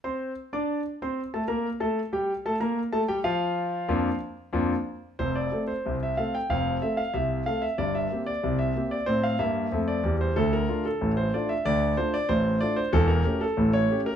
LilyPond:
<<
  \new Staff \with { instrumentName = "Grand piano" } { \time 2/4 \key bes \lydian \tempo 4 = 93 <c' c'' c'''>8. <d' d'' d'''>8. <c' c'' c'''>8 | <a a' a''>16 <bes bes' bes''>8 <a a' a''>8 <g g' g''>8 <a a' a''>16 | <bes bes' bes''>8 <a a' a''>16 <g g' g''>16 <f f' f''>4~ | <f f' f''>4. r8 |
c''16 d''8 c''8 e''16 f''16 g''16 | f''8 e''16 f''16 e''8 f''16 e''16 | d''16 e''8 d''8 e''8 d''16 | c''16 f''16 e''8. d''8 c''16 |
a'16 bes'8 a'8 c''16 d''16 e''16 | d''8 c''16 d''16 c''8 d''16 c''16 | a'16 bes'8 a'8 cis''8 bes'16 | }
  \new Staff \with { instrumentName = "Grand piano" } { \time 2/4 \key bes \lydian r2 | r2 | r2 | <f, bes d' f'>8 r8 <f, bes d' f'>8 r8 |
<f,, f,>8 <a c' a'>8 <c, c>8 <a c' a'>8 | <f,, f,>8 <a c' a'>8 <c, c>8 <a c' a'>8 | <g,, g,>8 <bes c' g'>8 <c, c>8 <bes c' g'>8 | <a, c'>8 <g, bes>8 <f, a>8 <e, g>8 |
<d, d>8 <a d' f'>8 <a,, a,>8 <a d' f'>8 | <d, d>8 <a d' f'>8 <a,, a,>8 <a d' f'>8 | <e,, e,>8 <a cis' g'>8 <a,, a,>8 <a cis' g'>8 | }
>>